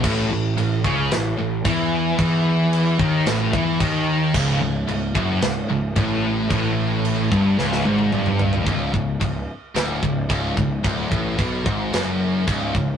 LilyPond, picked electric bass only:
\new Staff \with { instrumentName = "Picked electric bass" } { \clef bass \time 4/4 \key cis \minor \tempo 4 = 111 a,,8 a,,8 a,,8 cis,8 a,,8 a,,8 e,4 | e,4. dis,8 a,,8 e,8 dis,4 | cis,,8 cis,,8 cis,,8 fis,,8 cis,,8 cis,,8 a,,4 | a,,4. g,,8 cis,,8 gis,,8 g,,4 |
cis,,8 cis,,8 cis,,8 r8 d,,8 cis,,8 cis,,8 cis,,8 | d,,8 a,,8 b,,8 gis,,8 fis,,4 cis,,8 cis,,8 | }